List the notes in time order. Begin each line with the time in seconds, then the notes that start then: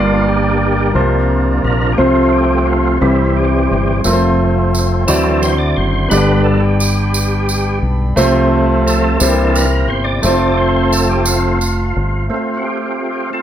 Already playing: G1 G2 G3 A#3 D4 F4 G4 A#4 D5 G5 A#5
0.28 G4
0.94 C2 C3 F3 A#3 D4 F4 C5 F5
1.64 A#1 A#4
1.92 G4
1.97 C2 C3 F3 A3 C4 F4 C5 A5 C6
2.32 G4
2.66 F4
3.01 C2 C3 E3 G3 C4 E4 B4 E5 G5
3.09 C5
3.36 G4
3.71 G1
4.04 F1 F3 A3 C4 F4 A#4 F5 A5, tambourine
4.13 C5
4.75 tambourine
5.07 D2 D3 E3 F#3 C4 E4 F#4 A4 D5 E5 F#5, tambourine
5.42 C5, tambourine
5.58 D5
5.77 F#1 C5
6.09 G1 G2 D3 G3 B3 D4 G4 B4 G5 B5, tambourine
6.13 D5
6.44 A4
6.60 G4
6.79 G4, tambourine
7.14 tambourine
7.49 tambourine
7.83 B1
8.16 C2 C3 F3 A3 C4 F4 A4 C5 F5 A5, tambourine
8.87 A4, tambourine
9.19 C2 C3 E3 A#3 D4 E4 G4 C5 E5 G5, tambourine
9.54 A#4, tambourine
9.88 G1 C5
10.04 D5
10.21 F1 F3 A3 C4 F4 A4 F5 A5, tambourine
10.26 C5
10.57 C5
10.92 A4, tambourine
11.09 G4
11.26 F3 A3 C4 F4, tambourine
11.61 tambourine
11.96 G1
12.28 A3 C4 F4
12.33 C5
12.57 F#4
12.64 C4 G4
13.33 C4 F4 A4